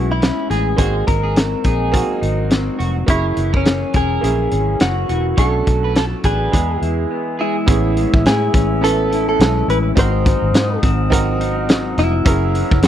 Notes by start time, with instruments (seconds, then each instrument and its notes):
Already playing: fingered electric bass B1, clean electric guitar A2 G#3 C#4 E4 F#4, upright piano B3 C#4 E4 G#4 G#5
0.12 clean electric guitar E4
0.20 clean electric guitar C#4, snare, closed hi-hat
0.50 fingered electric bass A1, clean electric guitar G#3 G#4, snare, closed hi-hat
0.77 fingered electric bass G#1, clean electric guitar G#2 G#4 C5, upright piano A#3 C4 D#4 F#4, kick, closed hi-hat
1.07 fingered electric bass G#1, clean electric guitar F#3 A#4, kick, closed hi-hat
1.23 clean electric guitar G#4
1.36 clean electric guitar C4, snare, closed hi-hat
1.64 fingered electric bass A#1, clean electric guitar D#4 G#4, kick, closed hi-hat
1.92 clean electric guitar F#3, upright piano A#3 C4 D#4 F#4, kick, closed hi-hat
2.21 fingered electric bass G#1, clean electric guitar D#4, closed hi-hat
2.49 clean electric guitar C4, snare, closed hi-hat
2.78 fingered electric bass F1, clean electric guitar F#3 F#4, closed hi-hat
3.06 fingered electric bass F#1, clean electric guitar F#2 E4 C#5, upright piano A#3 C#4 E4 G#4, kick, closed hi-hat
3.37 fingered electric bass F#1, clean electric guitar E3, closed hi-hat
3.53 clean electric guitar C#4 A#4, kick
3.65 clean electric guitar A#3, snare, closed hi-hat
3.93 fingered electric bass E1, clean electric guitar C#4 G#4 A#4, kick, closed hi-hat
4.21 fingered electric bass A#1, clean electric guitar E3, upright piano A#3 C#4 E4 G#4, closed hi-hat
4.51 fingered electric bass G#1, clean electric guitar C#4, closed hi-hat
4.80 fingered electric bass F#1, clean electric guitar A#3 F#4, snare, closed hi-hat
5.09 fingered electric bass E1, clean electric guitar E3 F#4, closed hi-hat
5.37 fingered electric bass B1, clean electric guitar B2 A4 C#5, upright piano A3 C#4 D4 F#4, kick, closed hi-hat
5.66 fingered electric bass B1, clean electric guitar F#3, kick, closed hi-hat
5.84 clean electric guitar B4
5.95 clean electric guitar A3 A4, snare, closed hi-hat
6.23 fingered electric bass A1, clean electric guitar D4 G#4 B4, kick, closed hi-hat
6.52 fingered electric bass E2, clean electric guitar E3, upright piano G#3 B3 E4 G#4, kick, closed hi-hat
6.82 fingered electric bass E2, clean electric guitar E4, closed hi-hat
7.11 clean electric guitar B3
7.39 clean electric guitar G#3 E4 G#4
7.66 fingered electric bass A1, clean electric guitar A2, upright piano B3 C#4 E4 G#4, flute section C#5 E5 G#5 E6, kick, closed hi-hat
7.97 clean electric guitar G#3, closed hi-hat
8.13 fingered electric bass A1, kick
8.25 fingered electric bass A2, clean electric guitar E4 G#4, snare, closed hi-hat
8.53 fingered electric bass A1, clean electric guitar C#4, kick, closed hi-hat
8.81 upright piano B3 C#4 E4 B4, clean electric guitar A4, closed hi-hat
9.11 clean electric guitar E4, closed hi-hat
9.29 clean electric guitar A4
9.39 fingered electric bass B1, clean electric guitar G#3, snare, closed hi-hat
9.68 fingered electric bass A1, clean electric guitar E4 B4, closed hi-hat
9.96 fingered electric bass G#1, clean electric guitar G#2 C5, upright piano C4 D#4 F#4 A#4, flute section C5 F#5 D#6, kick, closed hi-hat
10.25 clean electric guitar F#3, kick, closed hi-hat
10.42 fingered electric bass G#1
10.53 fingered electric bass G#2, clean electric guitar D#4, snare, closed hi-hat
10.82 fingered electric bass G#1, clean electric guitar C4, kick, closed hi-hat
11.10 clean electric guitar F#3, upright piano C4 D#4 F#4 A#4, kick, closed hi-hat
11.41 clean electric guitar D#4, closed hi-hat
11.69 clean electric guitar F#3, snare, closed hi-hat
11.98 fingered electric bass F1, clean electric guitar E4, snare, closed hi-hat
12.25 fingered electric bass F#1, clean electric guitar F#2, upright piano C#4 E4 G#4 A#4, flute section C#5 A#5 E6, kick, closed hi-hat
12.55 clean electric guitar E3, closed hi-hat
12.71 fingered electric bass F#1, kick
12.82 fingered electric bass F#2, clean electric guitar C#4, snare, closed hi-hat